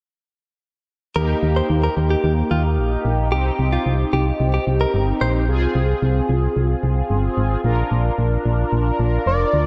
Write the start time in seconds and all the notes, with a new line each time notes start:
1.16 D#2 A#3 D#4 G4 A#4
1.43 D#2
1.56 C5
1.70 D#2
1.84 A#4
1.97 D#2
2.10 G4
2.24 D#2
2.51 D#2 F4
2.78 A#1
3.05 A#1
3.32 C2 C4 D#4 G4
3.59 C2
3.73 F4
3.86 C2
4.13 C2 G4
4.40 C2
4.54 G4
4.67 C2
4.81 A#4
4.94 G1
5.21 A#1 C5
5.48 C2 C4 F4 G#4
5.75 C2
6.02 C2
6.29 C2
6.57 C2
6.83 C2
7.10 G1
7.37 G#1
7.64 A#1 D4 F4 A#4
7.91 A#1
8.19 A#1
8.46 A#1
8.73 A#1
9.00 A#1
9.26 F1 D5
9.54 D2